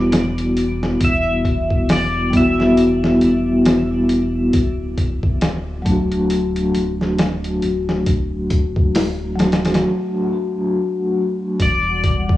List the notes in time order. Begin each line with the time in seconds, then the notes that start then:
Already playing: E1 G3 B3 E4 F#4 D5
0.12 snare, open hi-hat
0.38 closed hi-hat
0.57 open hi-hat
0.83 snare
1.01 E1 E5, kick, open hi-hat
1.45 kick, open hi-hat
1.70 kick
1.89 D5, snare, open hi-hat
2.30 G3 B3, kick, open hi-hat
2.36 E4 F#4 E5
2.60 snare
2.77 open hi-hat
3.04 snare
3.21 E1, open hi-hat
3.65 snare, open hi-hat
4.09 open hi-hat
4.53 D1, kick, open hi-hat
4.98 kick, open hi-hat
5.23 kick
5.41 snare, open hi-hat
5.82 F#3 A3, kick, open hi-hat
5.88 D4 F#4
6.11 closed hi-hat
6.30 open hi-hat
6.56 closed hi-hat
6.74 D1, open hi-hat
7.01 snare
7.18 snare, open hi-hat
7.44 closed hi-hat
7.62 D1, open hi-hat
7.89 snare
8.06 D1, kick, open hi-hat
8.50 kick, open hi-hat
8.76 kick
8.95 snare, open hi-hat
9.36 F#3 A3, open hi-hat
9.40 D4, snare
9.45 F#4
9.52 snare, open hi-hat
9.65 snare, open hi-hat
9.74 snare, open hi-hat
11.60 E1 G3 D5 F#5 D6, kick, open hi-hat
12.04 kick, open hi-hat
12.29 kick